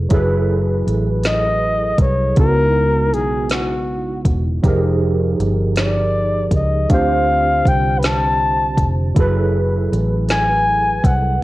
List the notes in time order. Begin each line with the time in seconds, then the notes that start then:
0.09 F#1 F#3 E4 G#4, kick, closed hi-hat
0.13 A4 B4
0.87 A1, closed hi-hat
1.23 D#5, snare, closed hi-hat
1.98 C2 C#5, kick, closed hi-hat
2.35 C#2 C#3 G#3 D#4 E4 A#4, kick, closed hi-hat
2.40 B3 F#4
3.13 B1 G#4, closed hi-hat
3.50 F#4, snare, closed hi-hat
4.25 E1, kick, closed hi-hat
4.63 F1 F3 D#4 G4, kick, closed hi-hat
4.67 G#4 A#4
5.40 G1, closed hi-hat
5.76 D5, snare, closed hi-hat
6.51 C#2, kick, closed hi-hat
6.55 D#5
6.88 D2 D3 C4 D4 F4 G4 F5, kick, closed hi-hat
6.94 C5
7.65 C2 G5, kick, closed hi-hat
7.99 B4
8.03 A5, snare, closed hi-hat
8.77 F1, kick, closed hi-hat
9.14 F#1 F#3 E4 G#4, kick, closed hi-hat
9.19 A4 B4
9.92 A1, closed hi-hat
10.29 G#5, snare, closed hi-hat
11.04 C2 F#5, kick, closed hi-hat